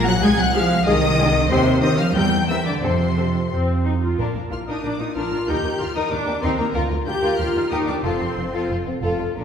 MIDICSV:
0, 0, Header, 1, 6, 480
1, 0, Start_track
1, 0, Key_signature, -2, "major"
1, 0, Tempo, 642398
1, 164, Time_signature, 2, 2, 24, 8
1, 1607, Tempo, 680272
1, 3047, Tempo, 645856
1, 6950, End_track
2, 0, Start_track
2, 0, Title_t, "Violin section"
2, 0, Program_c, 0, 48
2, 52, Note_on_c, 0, 90, 106
2, 165, Note_off_c, 0, 90, 0
2, 169, Note_on_c, 0, 92, 105
2, 286, Note_off_c, 0, 92, 0
2, 286, Note_on_c, 0, 90, 102
2, 401, Note_on_c, 0, 89, 105
2, 404, Note_off_c, 0, 90, 0
2, 639, Note_on_c, 0, 87, 113
2, 641, Note_off_c, 0, 89, 0
2, 1106, Note_off_c, 0, 87, 0
2, 1123, Note_on_c, 0, 84, 106
2, 1358, Note_off_c, 0, 84, 0
2, 1360, Note_on_c, 0, 87, 91
2, 1481, Note_off_c, 0, 87, 0
2, 1491, Note_on_c, 0, 89, 99
2, 1605, Note_on_c, 0, 91, 102
2, 1611, Note_off_c, 0, 89, 0
2, 1839, Note_off_c, 0, 91, 0
2, 1844, Note_on_c, 0, 88, 89
2, 1963, Note_off_c, 0, 88, 0
2, 1968, Note_on_c, 0, 86, 78
2, 2016, Note_off_c, 0, 86, 0
2, 2096, Note_on_c, 0, 84, 78
2, 2567, Note_off_c, 0, 84, 0
2, 3291, Note_on_c, 0, 89, 52
2, 3338, Note_off_c, 0, 89, 0
2, 3415, Note_on_c, 0, 87, 60
2, 3529, Note_off_c, 0, 87, 0
2, 3533, Note_on_c, 0, 86, 66
2, 3650, Note_off_c, 0, 86, 0
2, 3656, Note_on_c, 0, 87, 59
2, 3766, Note_on_c, 0, 89, 68
2, 3771, Note_off_c, 0, 87, 0
2, 4000, Note_off_c, 0, 89, 0
2, 4004, Note_on_c, 0, 91, 78
2, 4240, Note_on_c, 0, 89, 73
2, 4241, Note_off_c, 0, 91, 0
2, 4359, Note_off_c, 0, 89, 0
2, 4361, Note_on_c, 0, 87, 74
2, 4471, Note_on_c, 0, 86, 78
2, 4478, Note_off_c, 0, 87, 0
2, 4704, Note_on_c, 0, 84, 78
2, 4710, Note_off_c, 0, 86, 0
2, 4753, Note_off_c, 0, 84, 0
2, 4824, Note_on_c, 0, 82, 66
2, 4944, Note_off_c, 0, 82, 0
2, 5179, Note_on_c, 0, 91, 79
2, 5407, Note_off_c, 0, 91, 0
2, 5421, Note_on_c, 0, 89, 70
2, 5657, Note_on_c, 0, 87, 75
2, 5665, Note_off_c, 0, 89, 0
2, 5708, Note_off_c, 0, 87, 0
2, 5786, Note_on_c, 0, 86, 68
2, 5835, Note_off_c, 0, 86, 0
2, 5900, Note_on_c, 0, 84, 66
2, 6382, Note_off_c, 0, 84, 0
2, 6950, End_track
3, 0, Start_track
3, 0, Title_t, "Violin section"
3, 0, Program_c, 1, 48
3, 42, Note_on_c, 1, 78, 90
3, 162, Note_on_c, 1, 80, 96
3, 163, Note_off_c, 1, 78, 0
3, 280, Note_on_c, 1, 78, 89
3, 283, Note_off_c, 1, 80, 0
3, 401, Note_off_c, 1, 78, 0
3, 409, Note_on_c, 1, 77, 100
3, 639, Note_on_c, 1, 75, 98
3, 640, Note_off_c, 1, 77, 0
3, 1106, Note_off_c, 1, 75, 0
3, 1119, Note_on_c, 1, 72, 94
3, 1359, Note_on_c, 1, 75, 89
3, 1361, Note_off_c, 1, 72, 0
3, 1480, Note_off_c, 1, 75, 0
3, 1482, Note_on_c, 1, 77, 83
3, 1532, Note_off_c, 1, 77, 0
3, 1609, Note_on_c, 1, 79, 87
3, 1841, Note_off_c, 1, 79, 0
3, 1847, Note_on_c, 1, 76, 78
3, 1965, Note_on_c, 1, 74, 69
3, 1966, Note_off_c, 1, 76, 0
3, 2086, Note_off_c, 1, 74, 0
3, 2088, Note_on_c, 1, 72, 65
3, 2573, Note_off_c, 1, 72, 0
3, 3045, Note_on_c, 1, 70, 49
3, 3048, Note_on_c, 1, 62, 44
3, 3155, Note_off_c, 1, 70, 0
3, 3157, Note_off_c, 1, 62, 0
3, 3163, Note_on_c, 1, 70, 31
3, 3166, Note_on_c, 1, 62, 33
3, 3213, Note_off_c, 1, 70, 0
3, 3214, Note_off_c, 1, 62, 0
3, 3281, Note_on_c, 1, 65, 36
3, 3282, Note_on_c, 1, 58, 36
3, 3331, Note_off_c, 1, 58, 0
3, 3331, Note_off_c, 1, 65, 0
3, 3406, Note_on_c, 1, 62, 52
3, 3407, Note_on_c, 1, 70, 54
3, 3519, Note_off_c, 1, 62, 0
3, 3519, Note_off_c, 1, 70, 0
3, 3527, Note_on_c, 1, 70, 40
3, 3530, Note_on_c, 1, 62, 40
3, 3575, Note_off_c, 1, 70, 0
3, 3578, Note_off_c, 1, 62, 0
3, 3643, Note_on_c, 1, 65, 42
3, 3645, Note_on_c, 1, 58, 38
3, 3691, Note_off_c, 1, 65, 0
3, 3693, Note_off_c, 1, 58, 0
3, 3765, Note_on_c, 1, 62, 55
3, 3765, Note_on_c, 1, 70, 52
3, 3874, Note_off_c, 1, 70, 0
3, 3875, Note_off_c, 1, 62, 0
3, 3883, Note_on_c, 1, 62, 48
3, 3883, Note_on_c, 1, 70, 52
3, 3931, Note_off_c, 1, 70, 0
3, 3932, Note_off_c, 1, 62, 0
3, 4002, Note_on_c, 1, 63, 56
3, 4003, Note_on_c, 1, 70, 60
3, 4114, Note_off_c, 1, 63, 0
3, 4114, Note_off_c, 1, 70, 0
3, 4122, Note_on_c, 1, 63, 46
3, 4124, Note_on_c, 1, 70, 45
3, 4170, Note_off_c, 1, 63, 0
3, 4171, Note_off_c, 1, 70, 0
3, 4239, Note_on_c, 1, 67, 44
3, 4241, Note_on_c, 1, 58, 48
3, 4287, Note_off_c, 1, 67, 0
3, 4289, Note_off_c, 1, 58, 0
3, 4353, Note_on_c, 1, 70, 73
3, 4355, Note_on_c, 1, 63, 63
3, 4457, Note_off_c, 1, 63, 0
3, 4460, Note_off_c, 1, 70, 0
3, 4466, Note_on_c, 1, 63, 53
3, 4469, Note_on_c, 1, 70, 51
3, 4515, Note_off_c, 1, 63, 0
3, 4518, Note_off_c, 1, 70, 0
3, 4589, Note_on_c, 1, 58, 58
3, 4589, Note_on_c, 1, 67, 54
3, 4637, Note_off_c, 1, 58, 0
3, 4637, Note_off_c, 1, 67, 0
3, 4706, Note_on_c, 1, 70, 75
3, 4709, Note_on_c, 1, 63, 74
3, 4811, Note_off_c, 1, 63, 0
3, 4811, Note_off_c, 1, 70, 0
3, 4820, Note_on_c, 1, 63, 61
3, 4820, Note_on_c, 1, 70, 58
3, 4870, Note_off_c, 1, 63, 0
3, 4870, Note_off_c, 1, 70, 0
3, 4939, Note_on_c, 1, 70, 69
3, 4940, Note_on_c, 1, 65, 69
3, 5049, Note_off_c, 1, 65, 0
3, 5049, Note_off_c, 1, 70, 0
3, 5058, Note_on_c, 1, 65, 52
3, 5058, Note_on_c, 1, 70, 44
3, 5108, Note_off_c, 1, 65, 0
3, 5108, Note_off_c, 1, 70, 0
3, 5179, Note_on_c, 1, 62, 52
3, 5181, Note_on_c, 1, 65, 54
3, 5229, Note_off_c, 1, 62, 0
3, 5231, Note_off_c, 1, 65, 0
3, 5297, Note_on_c, 1, 70, 70
3, 5299, Note_on_c, 1, 65, 71
3, 5414, Note_off_c, 1, 70, 0
3, 5415, Note_off_c, 1, 65, 0
3, 5422, Note_on_c, 1, 70, 47
3, 5425, Note_on_c, 1, 67, 51
3, 5471, Note_off_c, 1, 70, 0
3, 5474, Note_off_c, 1, 67, 0
3, 5547, Note_on_c, 1, 67, 51
3, 5548, Note_on_c, 1, 63, 55
3, 5596, Note_off_c, 1, 63, 0
3, 5596, Note_off_c, 1, 67, 0
3, 5661, Note_on_c, 1, 67, 66
3, 5665, Note_on_c, 1, 70, 65
3, 5777, Note_off_c, 1, 67, 0
3, 5779, Note_off_c, 1, 70, 0
3, 5790, Note_on_c, 1, 67, 53
3, 5790, Note_on_c, 1, 70, 50
3, 5838, Note_off_c, 1, 67, 0
3, 5838, Note_off_c, 1, 70, 0
3, 5902, Note_on_c, 1, 69, 64
3, 5904, Note_on_c, 1, 65, 60
3, 6017, Note_off_c, 1, 69, 0
3, 6018, Note_off_c, 1, 65, 0
3, 6026, Note_on_c, 1, 69, 39
3, 6027, Note_on_c, 1, 65, 42
3, 6076, Note_off_c, 1, 69, 0
3, 6077, Note_off_c, 1, 65, 0
3, 6158, Note_on_c, 1, 60, 41
3, 6159, Note_on_c, 1, 65, 44
3, 6206, Note_off_c, 1, 60, 0
3, 6207, Note_off_c, 1, 65, 0
3, 6273, Note_on_c, 1, 65, 68
3, 6273, Note_on_c, 1, 69, 67
3, 6384, Note_off_c, 1, 65, 0
3, 6385, Note_off_c, 1, 69, 0
3, 6392, Note_on_c, 1, 65, 43
3, 6394, Note_on_c, 1, 69, 45
3, 6442, Note_off_c, 1, 65, 0
3, 6443, Note_off_c, 1, 69, 0
3, 6516, Note_on_c, 1, 65, 46
3, 6518, Note_on_c, 1, 60, 43
3, 6565, Note_off_c, 1, 65, 0
3, 6567, Note_off_c, 1, 60, 0
3, 6631, Note_on_c, 1, 69, 70
3, 6633, Note_on_c, 1, 65, 64
3, 6743, Note_off_c, 1, 65, 0
3, 6744, Note_off_c, 1, 69, 0
3, 6751, Note_on_c, 1, 65, 54
3, 6753, Note_on_c, 1, 69, 47
3, 6803, Note_off_c, 1, 65, 0
3, 6804, Note_off_c, 1, 69, 0
3, 6877, Note_on_c, 1, 62, 59
3, 6877, Note_on_c, 1, 70, 62
3, 6950, Note_off_c, 1, 62, 0
3, 6950, Note_off_c, 1, 70, 0
3, 6950, End_track
4, 0, Start_track
4, 0, Title_t, "Viola section"
4, 0, Program_c, 2, 48
4, 169, Note_on_c, 2, 68, 87
4, 171, Note_on_c, 2, 56, 89
4, 229, Note_off_c, 2, 68, 0
4, 230, Note_off_c, 2, 56, 0
4, 410, Note_on_c, 2, 68, 71
4, 412, Note_on_c, 2, 56, 73
4, 470, Note_off_c, 2, 68, 0
4, 471, Note_off_c, 2, 56, 0
4, 647, Note_on_c, 2, 56, 76
4, 648, Note_on_c, 2, 68, 77
4, 707, Note_off_c, 2, 56, 0
4, 708, Note_off_c, 2, 68, 0
4, 889, Note_on_c, 2, 56, 69
4, 890, Note_on_c, 2, 68, 66
4, 949, Note_off_c, 2, 56, 0
4, 949, Note_off_c, 2, 68, 0
4, 1126, Note_on_c, 2, 60, 85
4, 1127, Note_on_c, 2, 67, 83
4, 1186, Note_off_c, 2, 60, 0
4, 1187, Note_off_c, 2, 67, 0
4, 1365, Note_on_c, 2, 67, 68
4, 1367, Note_on_c, 2, 60, 72
4, 1425, Note_off_c, 2, 67, 0
4, 1427, Note_off_c, 2, 60, 0
4, 1612, Note_on_c, 2, 60, 66
4, 1613, Note_on_c, 2, 70, 68
4, 1668, Note_off_c, 2, 60, 0
4, 1670, Note_off_c, 2, 70, 0
4, 1849, Note_on_c, 2, 70, 54
4, 1850, Note_on_c, 2, 60, 57
4, 1906, Note_off_c, 2, 60, 0
4, 1906, Note_off_c, 2, 70, 0
4, 2089, Note_on_c, 2, 60, 61
4, 2090, Note_on_c, 2, 69, 61
4, 2146, Note_off_c, 2, 60, 0
4, 2146, Note_off_c, 2, 69, 0
4, 2330, Note_on_c, 2, 60, 51
4, 2331, Note_on_c, 2, 69, 49
4, 2386, Note_off_c, 2, 60, 0
4, 2388, Note_off_c, 2, 69, 0
4, 2570, Note_on_c, 2, 60, 70
4, 2794, Note_off_c, 2, 60, 0
4, 2807, Note_on_c, 2, 63, 60
4, 2855, Note_off_c, 2, 63, 0
4, 2928, Note_on_c, 2, 65, 49
4, 3043, Note_off_c, 2, 65, 0
4, 3284, Note_on_c, 2, 65, 49
4, 3333, Note_off_c, 2, 65, 0
4, 3405, Note_on_c, 2, 63, 50
4, 3521, Note_on_c, 2, 62, 55
4, 3524, Note_off_c, 2, 63, 0
4, 3641, Note_off_c, 2, 62, 0
4, 3643, Note_on_c, 2, 63, 52
4, 3692, Note_off_c, 2, 63, 0
4, 3763, Note_on_c, 2, 65, 58
4, 3998, Note_off_c, 2, 65, 0
4, 3998, Note_on_c, 2, 67, 69
4, 4239, Note_off_c, 2, 67, 0
4, 4239, Note_on_c, 2, 65, 64
4, 4357, Note_on_c, 2, 63, 64
4, 4359, Note_off_c, 2, 65, 0
4, 4404, Note_off_c, 2, 63, 0
4, 4476, Note_on_c, 2, 62, 75
4, 4708, Note_off_c, 2, 62, 0
4, 4714, Note_on_c, 2, 60, 64
4, 4829, Note_off_c, 2, 60, 0
4, 4835, Note_on_c, 2, 58, 52
4, 4882, Note_off_c, 2, 58, 0
4, 5186, Note_on_c, 2, 67, 77
4, 5411, Note_off_c, 2, 67, 0
4, 5421, Note_on_c, 2, 65, 62
4, 5660, Note_off_c, 2, 65, 0
4, 5664, Note_on_c, 2, 63, 60
4, 5783, Note_on_c, 2, 62, 59
4, 5785, Note_off_c, 2, 63, 0
4, 5904, Note_on_c, 2, 60, 61
4, 5908, Note_off_c, 2, 62, 0
4, 6383, Note_off_c, 2, 60, 0
4, 6950, End_track
5, 0, Start_track
5, 0, Title_t, "Cello section"
5, 0, Program_c, 3, 48
5, 47, Note_on_c, 3, 54, 89
5, 94, Note_off_c, 3, 54, 0
5, 168, Note_on_c, 3, 56, 100
5, 215, Note_off_c, 3, 56, 0
5, 288, Note_on_c, 3, 54, 89
5, 335, Note_off_c, 3, 54, 0
5, 406, Note_on_c, 3, 53, 98
5, 638, Note_off_c, 3, 53, 0
5, 646, Note_on_c, 3, 51, 101
5, 1110, Note_off_c, 3, 51, 0
5, 1122, Note_on_c, 3, 48, 98
5, 1358, Note_off_c, 3, 48, 0
5, 1359, Note_on_c, 3, 51, 88
5, 1480, Note_off_c, 3, 51, 0
5, 1483, Note_on_c, 3, 53, 87
5, 1605, Note_on_c, 3, 55, 86
5, 1607, Note_off_c, 3, 53, 0
5, 1844, Note_off_c, 3, 55, 0
5, 1846, Note_on_c, 3, 52, 76
5, 1894, Note_off_c, 3, 52, 0
5, 1967, Note_on_c, 3, 50, 65
5, 2085, Note_off_c, 3, 50, 0
5, 2089, Note_on_c, 3, 48, 72
5, 2574, Note_off_c, 3, 48, 0
5, 3042, Note_on_c, 3, 46, 58
5, 3092, Note_off_c, 3, 46, 0
5, 3163, Note_on_c, 3, 46, 36
5, 3213, Note_off_c, 3, 46, 0
5, 3282, Note_on_c, 3, 46, 39
5, 3332, Note_off_c, 3, 46, 0
5, 3408, Note_on_c, 3, 46, 57
5, 3456, Note_off_c, 3, 46, 0
5, 3526, Note_on_c, 3, 46, 41
5, 3574, Note_off_c, 3, 46, 0
5, 3647, Note_on_c, 3, 46, 43
5, 3695, Note_off_c, 3, 46, 0
5, 3765, Note_on_c, 3, 46, 58
5, 3813, Note_off_c, 3, 46, 0
5, 3879, Note_on_c, 3, 46, 44
5, 3928, Note_off_c, 3, 46, 0
5, 3997, Note_on_c, 3, 39, 72
5, 4046, Note_off_c, 3, 39, 0
5, 4117, Note_on_c, 3, 39, 41
5, 4166, Note_off_c, 3, 39, 0
5, 4233, Note_on_c, 3, 39, 47
5, 4282, Note_off_c, 3, 39, 0
5, 4355, Note_on_c, 3, 39, 72
5, 4403, Note_off_c, 3, 39, 0
5, 4471, Note_on_c, 3, 39, 49
5, 4520, Note_off_c, 3, 39, 0
5, 4591, Note_on_c, 3, 39, 49
5, 4639, Note_off_c, 3, 39, 0
5, 4709, Note_on_c, 3, 39, 77
5, 4757, Note_off_c, 3, 39, 0
5, 4828, Note_on_c, 3, 39, 53
5, 4876, Note_off_c, 3, 39, 0
5, 4944, Note_on_c, 3, 38, 79
5, 4993, Note_off_c, 3, 38, 0
5, 5064, Note_on_c, 3, 38, 49
5, 5113, Note_off_c, 3, 38, 0
5, 5184, Note_on_c, 3, 38, 54
5, 5233, Note_off_c, 3, 38, 0
5, 5303, Note_on_c, 3, 38, 76
5, 5352, Note_off_c, 3, 38, 0
5, 5422, Note_on_c, 3, 39, 51
5, 5471, Note_off_c, 3, 39, 0
5, 5542, Note_on_c, 3, 39, 49
5, 5591, Note_off_c, 3, 39, 0
5, 5664, Note_on_c, 3, 39, 72
5, 5713, Note_off_c, 3, 39, 0
5, 5785, Note_on_c, 3, 39, 47
5, 5835, Note_off_c, 3, 39, 0
5, 5904, Note_on_c, 3, 41, 69
5, 5954, Note_off_c, 3, 41, 0
5, 6026, Note_on_c, 3, 41, 42
5, 6076, Note_off_c, 3, 41, 0
5, 6149, Note_on_c, 3, 41, 47
5, 6198, Note_off_c, 3, 41, 0
5, 6269, Note_on_c, 3, 41, 66
5, 6319, Note_off_c, 3, 41, 0
5, 6390, Note_on_c, 3, 41, 45
5, 6440, Note_off_c, 3, 41, 0
5, 6511, Note_on_c, 3, 41, 48
5, 6561, Note_off_c, 3, 41, 0
5, 6632, Note_on_c, 3, 41, 71
5, 6683, Note_off_c, 3, 41, 0
5, 6752, Note_on_c, 3, 41, 46
5, 6803, Note_off_c, 3, 41, 0
5, 6877, Note_on_c, 3, 46, 68
5, 6950, Note_off_c, 3, 46, 0
5, 6950, End_track
6, 0, Start_track
6, 0, Title_t, "Double bass section"
6, 0, Program_c, 4, 48
6, 0, Note_on_c, 4, 34, 80
6, 108, Note_off_c, 4, 34, 0
6, 162, Note_on_c, 4, 36, 92
6, 584, Note_off_c, 4, 36, 0
6, 642, Note_on_c, 4, 36, 97
6, 1060, Note_off_c, 4, 36, 0
6, 1113, Note_on_c, 4, 39, 98
6, 1547, Note_off_c, 4, 39, 0
6, 1605, Note_on_c, 4, 40, 77
6, 2028, Note_off_c, 4, 40, 0
6, 2085, Note_on_c, 4, 41, 70
6, 2515, Note_off_c, 4, 41, 0
6, 2570, Note_on_c, 4, 41, 66
6, 2991, Note_off_c, 4, 41, 0
6, 3045, Note_on_c, 4, 34, 50
6, 3094, Note_off_c, 4, 34, 0
6, 3289, Note_on_c, 4, 34, 40
6, 3337, Note_off_c, 4, 34, 0
6, 3527, Note_on_c, 4, 34, 38
6, 3575, Note_off_c, 4, 34, 0
6, 3764, Note_on_c, 4, 34, 55
6, 3812, Note_off_c, 4, 34, 0
6, 4006, Note_on_c, 4, 39, 62
6, 4053, Note_off_c, 4, 39, 0
6, 4239, Note_on_c, 4, 39, 46
6, 4287, Note_off_c, 4, 39, 0
6, 4475, Note_on_c, 4, 39, 49
6, 4523, Note_off_c, 4, 39, 0
6, 4710, Note_on_c, 4, 39, 71
6, 4758, Note_off_c, 4, 39, 0
6, 4947, Note_on_c, 4, 38, 77
6, 4995, Note_off_c, 4, 38, 0
6, 5188, Note_on_c, 4, 38, 52
6, 5236, Note_off_c, 4, 38, 0
6, 5427, Note_on_c, 4, 39, 50
6, 5475, Note_off_c, 4, 39, 0
6, 5666, Note_on_c, 4, 39, 65
6, 5715, Note_off_c, 4, 39, 0
6, 5905, Note_on_c, 4, 29, 67
6, 5955, Note_off_c, 4, 29, 0
6, 6151, Note_on_c, 4, 29, 46
6, 6200, Note_off_c, 4, 29, 0
6, 6392, Note_on_c, 4, 29, 47
6, 6441, Note_off_c, 4, 29, 0
6, 6635, Note_on_c, 4, 29, 65
6, 6685, Note_off_c, 4, 29, 0
6, 6878, Note_on_c, 4, 34, 65
6, 6950, Note_off_c, 4, 34, 0
6, 6950, End_track
0, 0, End_of_file